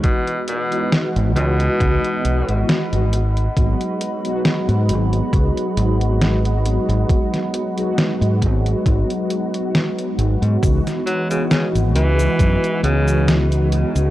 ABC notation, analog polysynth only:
X:1
M:4/4
L:1/16
Q:"Swing 16ths" 1/4=68
K:C#m
V:1 name="Analog polysynth"
[E,G,B,DF]3 [E,G,B,DF]8- [E,G,B,DF]3 z2 | [F,G,B,DF]3 [F,G,B,DF]12- [F,G,B,DF] | [F,G,B,DF]3 [F,G,B,DF]12- [F,G,B,DF] | [E,G,B,DF]3 [E,G,B,DF]12- [E,G,B,DF] |]